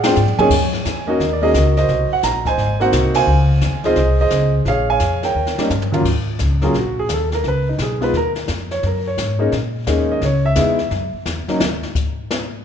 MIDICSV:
0, 0, Header, 1, 5, 480
1, 0, Start_track
1, 0, Tempo, 347222
1, 690, Time_signature, 4, 2, 24, 8
1, 17486, End_track
2, 0, Start_track
2, 0, Title_t, "Grand piano"
2, 0, Program_c, 0, 0
2, 0, Note_on_c, 0, 68, 64
2, 50, Note_on_c, 0, 79, 91
2, 63, Note_on_c, 0, 56, 63
2, 65, Note_on_c, 0, 60, 61
2, 73, Note_on_c, 0, 62, 59
2, 76, Note_on_c, 0, 74, 63
2, 81, Note_on_c, 0, 65, 74
2, 205, Note_off_c, 0, 56, 0
2, 206, Note_off_c, 0, 60, 0
2, 210, Note_off_c, 0, 62, 0
2, 214, Note_off_c, 0, 65, 0
2, 490, Note_off_c, 0, 68, 0
2, 492, Note_off_c, 0, 79, 0
2, 533, Note_on_c, 0, 80, 91
2, 534, Note_on_c, 0, 58, 65
2, 540, Note_on_c, 0, 61, 65
2, 549, Note_on_c, 0, 63, 62
2, 555, Note_on_c, 0, 68, 81
2, 559, Note_on_c, 0, 73, 62
2, 663, Note_off_c, 0, 74, 0
2, 679, Note_off_c, 0, 58, 0
2, 683, Note_off_c, 0, 61, 0
2, 687, Note_off_c, 0, 63, 0
2, 690, Note_off_c, 0, 68, 0
2, 1443, Note_off_c, 0, 73, 0
2, 1481, Note_on_c, 0, 58, 64
2, 1489, Note_on_c, 0, 75, 76
2, 1493, Note_on_c, 0, 63, 56
2, 1495, Note_on_c, 0, 61, 64
2, 1506, Note_on_c, 0, 66, 74
2, 1512, Note_on_c, 0, 70, 61
2, 1514, Note_off_c, 0, 80, 0
2, 1632, Note_off_c, 0, 58, 0
2, 1638, Note_off_c, 0, 63, 0
2, 1639, Note_off_c, 0, 61, 0
2, 1645, Note_off_c, 0, 66, 0
2, 1839, Note_on_c, 0, 74, 59
2, 1848, Note_off_c, 0, 75, 0
2, 1959, Note_on_c, 0, 58, 66
2, 1961, Note_off_c, 0, 74, 0
2, 1967, Note_on_c, 0, 61, 59
2, 1972, Note_on_c, 0, 63, 57
2, 1974, Note_off_c, 0, 70, 0
2, 1974, Note_on_c, 0, 75, 97
2, 1980, Note_on_c, 0, 68, 75
2, 1988, Note_on_c, 0, 66, 62
2, 1995, Note_on_c, 0, 70, 58
2, 2111, Note_off_c, 0, 58, 0
2, 2115, Note_off_c, 0, 61, 0
2, 2117, Note_off_c, 0, 63, 0
2, 2121, Note_off_c, 0, 68, 0
2, 2412, Note_off_c, 0, 75, 0
2, 2451, Note_off_c, 0, 66, 0
2, 2454, Note_on_c, 0, 75, 90
2, 2471, Note_on_c, 0, 66, 57
2, 2473, Note_on_c, 0, 72, 54
2, 2581, Note_off_c, 0, 70, 0
2, 2891, Note_off_c, 0, 75, 0
2, 2944, Note_on_c, 0, 78, 86
2, 3095, Note_on_c, 0, 82, 83
2, 3103, Note_off_c, 0, 78, 0
2, 3357, Note_off_c, 0, 66, 0
2, 3357, Note_off_c, 0, 72, 0
2, 3378, Note_off_c, 0, 82, 0
2, 3414, Note_on_c, 0, 80, 82
2, 3430, Note_on_c, 0, 72, 68
2, 3434, Note_on_c, 0, 75, 60
2, 3850, Note_off_c, 0, 80, 0
2, 3870, Note_on_c, 0, 58, 68
2, 3874, Note_on_c, 0, 60, 59
2, 3879, Note_on_c, 0, 63, 60
2, 3886, Note_off_c, 0, 75, 0
2, 3887, Note_off_c, 0, 72, 0
2, 3887, Note_on_c, 0, 66, 76
2, 3897, Note_on_c, 0, 78, 95
2, 3907, Note_on_c, 0, 75, 62
2, 3908, Note_on_c, 0, 72, 63
2, 4354, Note_off_c, 0, 72, 0
2, 4363, Note_on_c, 0, 80, 100
2, 4375, Note_on_c, 0, 72, 61
2, 4376, Note_on_c, 0, 77, 64
2, 4378, Note_off_c, 0, 78, 0
2, 4486, Note_off_c, 0, 58, 0
2, 4488, Note_off_c, 0, 60, 0
2, 4491, Note_off_c, 0, 63, 0
2, 4494, Note_off_c, 0, 66, 0
2, 4494, Note_off_c, 0, 75, 0
2, 5261, Note_off_c, 0, 80, 0
2, 5267, Note_off_c, 0, 72, 0
2, 5267, Note_off_c, 0, 77, 0
2, 5310, Note_on_c, 0, 56, 64
2, 5319, Note_on_c, 0, 60, 60
2, 5322, Note_on_c, 0, 63, 58
2, 5328, Note_on_c, 0, 65, 74
2, 5332, Note_on_c, 0, 75, 94
2, 5335, Note_on_c, 0, 68, 65
2, 5336, Note_on_c, 0, 72, 65
2, 5462, Note_off_c, 0, 56, 0
2, 5467, Note_off_c, 0, 60, 0
2, 5469, Note_off_c, 0, 63, 0
2, 5472, Note_off_c, 0, 65, 0
2, 5768, Note_off_c, 0, 75, 0
2, 5807, Note_off_c, 0, 68, 0
2, 5809, Note_off_c, 0, 72, 0
2, 5819, Note_on_c, 0, 75, 96
2, 5828, Note_on_c, 0, 68, 56
2, 5830, Note_on_c, 0, 72, 58
2, 6251, Note_off_c, 0, 75, 0
2, 6413, Note_off_c, 0, 68, 0
2, 6414, Note_off_c, 0, 72, 0
2, 6471, Note_on_c, 0, 77, 89
2, 6479, Note_on_c, 0, 73, 63
2, 6482, Note_on_c, 0, 68, 62
2, 6744, Note_off_c, 0, 77, 0
2, 6760, Note_off_c, 0, 73, 0
2, 6772, Note_on_c, 0, 80, 90
2, 6779, Note_on_c, 0, 77, 63
2, 6781, Note_on_c, 0, 73, 63
2, 7207, Note_off_c, 0, 80, 0
2, 7239, Note_off_c, 0, 73, 0
2, 7253, Note_on_c, 0, 70, 51
2, 7253, Note_on_c, 0, 79, 89
2, 7259, Note_on_c, 0, 73, 54
2, 7363, Note_off_c, 0, 68, 0
2, 7368, Note_off_c, 0, 77, 0
2, 7721, Note_on_c, 0, 55, 57
2, 7733, Note_on_c, 0, 58, 61
2, 7734, Note_on_c, 0, 61, 59
2, 7750, Note_on_c, 0, 63, 67
2, 7845, Note_off_c, 0, 79, 0
2, 7866, Note_off_c, 0, 55, 0
2, 7872, Note_off_c, 0, 58, 0
2, 7873, Note_off_c, 0, 61, 0
2, 7881, Note_off_c, 0, 63, 0
2, 8144, Note_off_c, 0, 70, 0
2, 8147, Note_off_c, 0, 73, 0
2, 8181, Note_on_c, 0, 39, 65
2, 8188, Note_on_c, 0, 54, 58
2, 8195, Note_on_c, 0, 58, 61
2, 8202, Note_on_c, 0, 61, 61
2, 8204, Note_on_c, 0, 65, 71
2, 8336, Note_off_c, 0, 39, 0
2, 8339, Note_off_c, 0, 54, 0
2, 8343, Note_off_c, 0, 58, 0
2, 8346, Note_off_c, 0, 61, 0
2, 8347, Note_off_c, 0, 65, 0
2, 9148, Note_on_c, 0, 54, 67
2, 9156, Note_on_c, 0, 58, 61
2, 9164, Note_on_c, 0, 61, 59
2, 9172, Note_on_c, 0, 65, 66
2, 9179, Note_on_c, 0, 68, 64
2, 9300, Note_off_c, 0, 54, 0
2, 9303, Note_off_c, 0, 58, 0
2, 9308, Note_off_c, 0, 61, 0
2, 9311, Note_off_c, 0, 65, 0
2, 9328, Note_off_c, 0, 68, 0
2, 9369, Note_on_c, 0, 66, 64
2, 9644, Note_off_c, 0, 66, 0
2, 9669, Note_on_c, 0, 68, 78
2, 9812, Note_off_c, 0, 68, 0
2, 9865, Note_on_c, 0, 69, 65
2, 10071, Note_off_c, 0, 69, 0
2, 10092, Note_on_c, 0, 69, 47
2, 10111, Note_off_c, 0, 69, 0
2, 10151, Note_on_c, 0, 70, 68
2, 10294, Note_off_c, 0, 70, 0
2, 10342, Note_on_c, 0, 71, 81
2, 10612, Note_off_c, 0, 71, 0
2, 10632, Note_on_c, 0, 63, 51
2, 10775, Note_off_c, 0, 63, 0
2, 10813, Note_on_c, 0, 68, 61
2, 11068, Note_on_c, 0, 56, 58
2, 11074, Note_on_c, 0, 59, 55
2, 11081, Note_on_c, 0, 63, 53
2, 11082, Note_on_c, 0, 65, 65
2, 11087, Note_off_c, 0, 68, 0
2, 11105, Note_on_c, 0, 71, 82
2, 11220, Note_off_c, 0, 56, 0
2, 11223, Note_off_c, 0, 59, 0
2, 11226, Note_off_c, 0, 63, 0
2, 11227, Note_off_c, 0, 65, 0
2, 11251, Note_off_c, 0, 71, 0
2, 11294, Note_on_c, 0, 70, 80
2, 11463, Note_off_c, 0, 70, 0
2, 12046, Note_on_c, 0, 73, 72
2, 12202, Note_off_c, 0, 73, 0
2, 12254, Note_on_c, 0, 70, 56
2, 12529, Note_off_c, 0, 70, 0
2, 12546, Note_on_c, 0, 73, 76
2, 12979, Note_on_c, 0, 56, 66
2, 12984, Note_on_c, 0, 58, 66
2, 12995, Note_on_c, 0, 61, 58
2, 12999, Note_on_c, 0, 63, 76
2, 13133, Note_off_c, 0, 73, 0
2, 13137, Note_off_c, 0, 56, 0
2, 13140, Note_off_c, 0, 58, 0
2, 13145, Note_off_c, 0, 61, 0
2, 13147, Note_off_c, 0, 63, 0
2, 13638, Note_on_c, 0, 56, 66
2, 13649, Note_on_c, 0, 58, 55
2, 13653, Note_on_c, 0, 61, 58
2, 13656, Note_on_c, 0, 63, 68
2, 13984, Note_on_c, 0, 75, 77
2, 14120, Note_off_c, 0, 56, 0
2, 14126, Note_off_c, 0, 58, 0
2, 14128, Note_off_c, 0, 61, 0
2, 14129, Note_off_c, 0, 63, 0
2, 14133, Note_off_c, 0, 75, 0
2, 14169, Note_on_c, 0, 73, 73
2, 14448, Note_off_c, 0, 73, 0
2, 14454, Note_on_c, 0, 76, 92
2, 14595, Note_on_c, 0, 56, 65
2, 14601, Note_on_c, 0, 59, 59
2, 14612, Note_on_c, 0, 63, 59
2, 14616, Note_on_c, 0, 64, 70
2, 14879, Note_off_c, 0, 56, 0
2, 14882, Note_off_c, 0, 59, 0
2, 14887, Note_off_c, 0, 63, 0
2, 14889, Note_off_c, 0, 64, 0
2, 15050, Note_off_c, 0, 76, 0
2, 15875, Note_on_c, 0, 54, 60
2, 15885, Note_on_c, 0, 61, 58
2, 15887, Note_on_c, 0, 58, 57
2, 15892, Note_on_c, 0, 63, 73
2, 16028, Note_off_c, 0, 54, 0
2, 16033, Note_off_c, 0, 61, 0
2, 16034, Note_off_c, 0, 58, 0
2, 16037, Note_off_c, 0, 63, 0
2, 17486, End_track
3, 0, Start_track
3, 0, Title_t, "Upright bass"
3, 0, Program_c, 1, 32
3, 0, Note_on_c, 1, 46, 83
3, 202, Note_off_c, 1, 46, 0
3, 228, Note_on_c, 1, 44, 78
3, 508, Note_off_c, 1, 44, 0
3, 695, Note_on_c, 1, 42, 75
3, 1157, Note_off_c, 1, 42, 0
3, 1177, Note_on_c, 1, 40, 82
3, 1638, Note_off_c, 1, 40, 0
3, 1656, Note_on_c, 1, 39, 82
3, 2117, Note_off_c, 1, 39, 0
3, 2132, Note_on_c, 1, 37, 82
3, 2594, Note_off_c, 1, 37, 0
3, 2609, Note_on_c, 1, 36, 93
3, 2896, Note_off_c, 1, 36, 0
3, 3081, Note_on_c, 1, 34, 78
3, 3547, Note_off_c, 1, 34, 0
3, 3556, Note_on_c, 1, 32, 77
3, 4024, Note_off_c, 1, 32, 0
3, 4039, Note_on_c, 1, 36, 85
3, 4505, Note_off_c, 1, 36, 0
3, 4517, Note_on_c, 1, 37, 88
3, 4984, Note_off_c, 1, 37, 0
3, 5003, Note_on_c, 1, 39, 81
3, 5467, Note_off_c, 1, 39, 0
3, 5479, Note_on_c, 1, 36, 81
3, 5944, Note_off_c, 1, 36, 0
3, 5954, Note_on_c, 1, 37, 82
3, 6421, Note_off_c, 1, 37, 0
3, 6431, Note_on_c, 1, 34, 95
3, 6899, Note_off_c, 1, 34, 0
3, 6917, Note_on_c, 1, 41, 78
3, 7382, Note_off_c, 1, 41, 0
3, 7394, Note_on_c, 1, 39, 74
3, 7684, Note_off_c, 1, 39, 0
3, 7881, Note_on_c, 1, 43, 77
3, 8344, Note_off_c, 1, 43, 0
3, 8362, Note_on_c, 1, 39, 76
3, 8824, Note_off_c, 1, 39, 0
3, 8847, Note_on_c, 1, 37, 80
3, 9304, Note_off_c, 1, 37, 0
3, 9312, Note_on_c, 1, 34, 78
3, 9780, Note_off_c, 1, 34, 0
3, 9797, Note_on_c, 1, 39, 71
3, 10262, Note_off_c, 1, 39, 0
3, 10274, Note_on_c, 1, 37, 79
3, 10741, Note_off_c, 1, 37, 0
3, 10758, Note_on_c, 1, 35, 83
3, 11223, Note_off_c, 1, 35, 0
3, 11234, Note_on_c, 1, 39, 79
3, 11702, Note_off_c, 1, 39, 0
3, 11726, Note_on_c, 1, 41, 80
3, 12188, Note_off_c, 1, 41, 0
3, 12208, Note_on_c, 1, 42, 80
3, 12669, Note_off_c, 1, 42, 0
3, 12684, Note_on_c, 1, 44, 83
3, 13148, Note_off_c, 1, 44, 0
3, 13166, Note_on_c, 1, 46, 81
3, 13629, Note_off_c, 1, 46, 0
3, 13642, Note_on_c, 1, 39, 78
3, 14108, Note_off_c, 1, 39, 0
3, 14119, Note_on_c, 1, 37, 86
3, 14587, Note_off_c, 1, 37, 0
3, 14600, Note_on_c, 1, 40, 78
3, 15067, Note_off_c, 1, 40, 0
3, 15082, Note_on_c, 1, 42, 82
3, 15372, Note_off_c, 1, 42, 0
3, 15562, Note_on_c, 1, 40, 72
3, 15853, Note_off_c, 1, 40, 0
3, 16047, Note_on_c, 1, 39, 83
3, 16348, Note_off_c, 1, 39, 0
3, 17486, End_track
4, 0, Start_track
4, 0, Title_t, "Muted upright bass strokes"
4, 538, Note_on_c, 9, 29, 36
4, 677, Note_off_c, 9, 29, 0
4, 2924, Note_on_c, 9, 29, 41
4, 3062, Note_off_c, 9, 29, 0
4, 7711, Note_on_c, 9, 29, 35
4, 7849, Note_off_c, 9, 29, 0
4, 15396, Note_on_c, 9, 29, 34
4, 15534, Note_off_c, 9, 29, 0
4, 15867, Note_on_c, 9, 29, 33
4, 16005, Note_off_c, 9, 29, 0
4, 17486, End_track
5, 0, Start_track
5, 0, Title_t, "Drums"
5, 47, Note_on_c, 9, 51, 64
5, 48, Note_on_c, 9, 38, 86
5, 185, Note_off_c, 9, 51, 0
5, 186, Note_off_c, 9, 38, 0
5, 217, Note_on_c, 9, 44, 63
5, 355, Note_off_c, 9, 44, 0
5, 383, Note_on_c, 9, 47, 53
5, 522, Note_off_c, 9, 47, 0
5, 536, Note_on_c, 9, 47, 78
5, 674, Note_off_c, 9, 47, 0
5, 695, Note_on_c, 9, 36, 67
5, 699, Note_on_c, 9, 25, 45
5, 699, Note_on_c, 9, 38, 42
5, 699, Note_on_c, 9, 49, 77
5, 834, Note_off_c, 9, 36, 0
5, 837, Note_off_c, 9, 38, 0
5, 837, Note_off_c, 9, 49, 0
5, 1004, Note_on_c, 9, 38, 35
5, 1142, Note_off_c, 9, 38, 0
5, 1178, Note_on_c, 9, 44, 59
5, 1179, Note_on_c, 9, 38, 54
5, 1316, Note_off_c, 9, 44, 0
5, 1317, Note_off_c, 9, 38, 0
5, 1658, Note_off_c, 9, 25, 0
5, 1658, Note_on_c, 9, 25, 56
5, 1658, Note_on_c, 9, 38, 45
5, 1796, Note_off_c, 9, 38, 0
5, 2130, Note_on_c, 9, 44, 51
5, 2131, Note_on_c, 9, 38, 55
5, 2268, Note_off_c, 9, 44, 0
5, 2269, Note_off_c, 9, 38, 0
5, 2442, Note_on_c, 9, 38, 41
5, 2581, Note_off_c, 9, 38, 0
5, 2604, Note_off_c, 9, 25, 0
5, 2604, Note_on_c, 9, 25, 44
5, 2604, Note_on_c, 9, 38, 41
5, 2743, Note_off_c, 9, 38, 0
5, 3080, Note_on_c, 9, 44, 63
5, 3081, Note_on_c, 9, 38, 56
5, 3218, Note_off_c, 9, 44, 0
5, 3219, Note_off_c, 9, 38, 0
5, 3393, Note_on_c, 9, 36, 49
5, 3393, Note_on_c, 9, 38, 37
5, 3531, Note_off_c, 9, 36, 0
5, 3531, Note_off_c, 9, 38, 0
5, 3568, Note_off_c, 9, 25, 0
5, 3568, Note_on_c, 9, 25, 54
5, 3568, Note_on_c, 9, 38, 43
5, 3706, Note_off_c, 9, 38, 0
5, 3877, Note_on_c, 9, 38, 36
5, 4016, Note_off_c, 9, 38, 0
5, 4042, Note_on_c, 9, 44, 66
5, 4044, Note_on_c, 9, 38, 63
5, 4181, Note_off_c, 9, 44, 0
5, 4182, Note_off_c, 9, 38, 0
5, 4344, Note_on_c, 9, 51, 69
5, 4345, Note_on_c, 9, 38, 72
5, 4482, Note_off_c, 9, 51, 0
5, 4484, Note_off_c, 9, 38, 0
5, 4512, Note_off_c, 9, 25, 0
5, 4512, Note_on_c, 9, 25, 51
5, 4992, Note_on_c, 9, 44, 52
5, 4994, Note_on_c, 9, 38, 55
5, 5130, Note_off_c, 9, 44, 0
5, 5132, Note_off_c, 9, 38, 0
5, 5305, Note_on_c, 9, 38, 41
5, 5443, Note_off_c, 9, 38, 0
5, 5469, Note_off_c, 9, 25, 0
5, 5469, Note_on_c, 9, 25, 57
5, 5469, Note_on_c, 9, 38, 48
5, 5607, Note_off_c, 9, 38, 0
5, 5948, Note_on_c, 9, 44, 52
5, 5950, Note_on_c, 9, 38, 64
5, 6087, Note_off_c, 9, 44, 0
5, 6088, Note_off_c, 9, 38, 0
5, 6435, Note_off_c, 9, 25, 0
5, 6435, Note_on_c, 9, 25, 44
5, 6435, Note_on_c, 9, 38, 43
5, 6573, Note_off_c, 9, 38, 0
5, 6906, Note_on_c, 9, 44, 50
5, 6908, Note_on_c, 9, 38, 55
5, 7045, Note_off_c, 9, 44, 0
5, 7046, Note_off_c, 9, 38, 0
5, 7228, Note_on_c, 9, 38, 39
5, 7366, Note_off_c, 9, 38, 0
5, 7554, Note_on_c, 9, 38, 47
5, 7692, Note_off_c, 9, 38, 0
5, 7719, Note_on_c, 9, 38, 68
5, 7857, Note_off_c, 9, 38, 0
5, 7882, Note_on_c, 9, 44, 60
5, 7883, Note_on_c, 9, 43, 64
5, 8020, Note_off_c, 9, 44, 0
5, 8021, Note_off_c, 9, 43, 0
5, 8042, Note_on_c, 9, 43, 64
5, 8180, Note_off_c, 9, 43, 0
5, 8203, Note_on_c, 9, 43, 81
5, 8341, Note_off_c, 9, 43, 0
5, 8359, Note_on_c, 9, 36, 59
5, 8364, Note_off_c, 9, 25, 0
5, 8364, Note_on_c, 9, 25, 38
5, 8364, Note_on_c, 9, 38, 39
5, 8364, Note_on_c, 9, 49, 66
5, 8497, Note_off_c, 9, 36, 0
5, 8502, Note_off_c, 9, 38, 0
5, 8502, Note_off_c, 9, 49, 0
5, 8831, Note_on_c, 9, 44, 47
5, 8832, Note_on_c, 9, 38, 51
5, 8969, Note_off_c, 9, 44, 0
5, 8971, Note_off_c, 9, 38, 0
5, 9144, Note_on_c, 9, 38, 38
5, 9282, Note_off_c, 9, 38, 0
5, 9316, Note_off_c, 9, 25, 0
5, 9316, Note_on_c, 9, 25, 46
5, 9316, Note_on_c, 9, 38, 43
5, 9455, Note_off_c, 9, 38, 0
5, 9800, Note_on_c, 9, 44, 54
5, 9801, Note_on_c, 9, 38, 58
5, 9938, Note_off_c, 9, 44, 0
5, 9939, Note_off_c, 9, 38, 0
5, 10116, Note_on_c, 9, 38, 37
5, 10254, Note_off_c, 9, 38, 0
5, 10281, Note_off_c, 9, 25, 0
5, 10281, Note_on_c, 9, 25, 41
5, 10281, Note_on_c, 9, 38, 36
5, 10419, Note_off_c, 9, 38, 0
5, 10760, Note_on_c, 9, 44, 49
5, 10762, Note_on_c, 9, 38, 54
5, 10898, Note_off_c, 9, 44, 0
5, 10900, Note_off_c, 9, 38, 0
5, 11078, Note_on_c, 9, 38, 36
5, 11216, Note_off_c, 9, 38, 0
5, 11246, Note_off_c, 9, 25, 0
5, 11246, Note_on_c, 9, 25, 48
5, 11246, Note_on_c, 9, 38, 39
5, 11384, Note_off_c, 9, 38, 0
5, 11548, Note_on_c, 9, 38, 41
5, 11686, Note_off_c, 9, 38, 0
5, 11718, Note_on_c, 9, 44, 56
5, 11720, Note_on_c, 9, 38, 62
5, 11857, Note_off_c, 9, 44, 0
5, 11858, Note_off_c, 9, 38, 0
5, 12039, Note_on_c, 9, 38, 39
5, 12178, Note_off_c, 9, 38, 0
5, 12203, Note_off_c, 9, 25, 0
5, 12203, Note_on_c, 9, 25, 48
5, 12203, Note_on_c, 9, 38, 40
5, 12341, Note_off_c, 9, 38, 0
5, 12686, Note_on_c, 9, 44, 54
5, 12687, Note_on_c, 9, 38, 59
5, 12824, Note_off_c, 9, 44, 0
5, 12825, Note_off_c, 9, 38, 0
5, 13161, Note_off_c, 9, 25, 0
5, 13161, Note_on_c, 9, 25, 47
5, 13161, Note_on_c, 9, 38, 46
5, 13299, Note_off_c, 9, 38, 0
5, 13640, Note_on_c, 9, 44, 59
5, 13642, Note_on_c, 9, 38, 62
5, 13779, Note_off_c, 9, 44, 0
5, 13780, Note_off_c, 9, 38, 0
5, 14120, Note_off_c, 9, 25, 0
5, 14120, Note_on_c, 9, 25, 43
5, 14120, Note_on_c, 9, 38, 44
5, 14258, Note_off_c, 9, 38, 0
5, 14591, Note_on_c, 9, 44, 62
5, 14592, Note_on_c, 9, 38, 61
5, 14729, Note_off_c, 9, 44, 0
5, 14730, Note_off_c, 9, 38, 0
5, 14909, Note_on_c, 9, 38, 38
5, 15047, Note_off_c, 9, 38, 0
5, 15077, Note_off_c, 9, 25, 0
5, 15077, Note_on_c, 9, 25, 50
5, 15077, Note_on_c, 9, 38, 42
5, 15215, Note_off_c, 9, 38, 0
5, 15558, Note_on_c, 9, 44, 50
5, 15560, Note_on_c, 9, 38, 58
5, 15696, Note_off_c, 9, 44, 0
5, 15698, Note_off_c, 9, 38, 0
5, 15874, Note_on_c, 9, 38, 38
5, 16012, Note_off_c, 9, 38, 0
5, 16038, Note_on_c, 9, 38, 81
5, 16176, Note_off_c, 9, 38, 0
5, 16354, Note_on_c, 9, 38, 43
5, 16422, Note_off_c, 9, 25, 0
5, 16492, Note_off_c, 9, 38, 0
5, 16523, Note_on_c, 9, 36, 74
5, 16525, Note_on_c, 9, 44, 49
5, 16661, Note_off_c, 9, 36, 0
5, 16663, Note_off_c, 9, 44, 0
5, 17011, Note_on_c, 9, 38, 104
5, 17149, Note_off_c, 9, 38, 0
5, 17486, End_track
0, 0, End_of_file